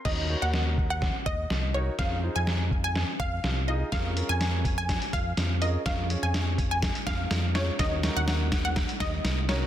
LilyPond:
<<
  \new Staff \with { instrumentName = "Synth pluck" } { \time 4/4 \key bes \minor \tempo 4 = 124 ees''8. ges''4 ges''8. ees''4 des''8 | f''8. aes''4 aes''8. f''4 ees''8 | f''8. aes''4 aes''8. f''4 ees''8 | f''8. aes''4 aes''8. f''4 des''8 |
ees''8. ges''4 ges''8. ees''4 des''8 | }
  \new Staff \with { instrumentName = "Grand piano" } { \time 4/4 \key bes \minor <ees' ges' bes' des''>8 <ees' ges' bes' des''>4. r4. <ees' ges' bes' des''>8 | <f' aes'>8 <ees' f' aes' c''>4. r4. <ees' f' aes' ees''>8 | r8 <des' f' aes' bes'>4. r4. <des' f' aes' bes'>8 | <des' f' aes' bes'>8 <des' f' aes' des''>4. r4. <des' f' aes' des''>8 |
<des' ees' ges' bes'>8 <des' ees' ges' bes'>4. r4. <des' ees' ges' bes'>8 | }
  \new Staff \with { instrumentName = "Analog synth bass" } { \clef bass \time 4/4 \key bes \minor ees,8. ees,4.~ ees,16 ees,8 c,4 | f,8. f,4.~ f,16 f,8 c,4 | f,8. f,4.~ f,16 f,8 f,4 | f,8. f,4.~ f,16 f,8 f,4 |
ees,8. ees,4.~ ees,16 ees,8 c,4 | }
  \new DrumStaff \with { instrumentName = "Drums" } \drummode { \time 4/4 <cymc bd sn>4 sn8 bd8 <bd sn>8 bd8 sn4 | <bd sn>4 sn8 bd8 sn8 bd8 sn4 | <hh bd sn>8 hh8 <hh sn>8 <hh bd>8 <hh bd sn>16 hh16 <hh bd>8 <hh sn>8 hh8 | <hh bd sn>8 hh8 <hh sn>8 <hh bd>8 <hh bd sn>16 hh16 <hh bd sn>8 <hh sn>8 <hh sn>8 |
<hh bd sn>8 <hh sn>8 <hh sn>8 <hh bd sn>8 <hh bd sn>16 hh16 <hh bd sn>8 <hh sn>8 <hh sn>8 | }
>>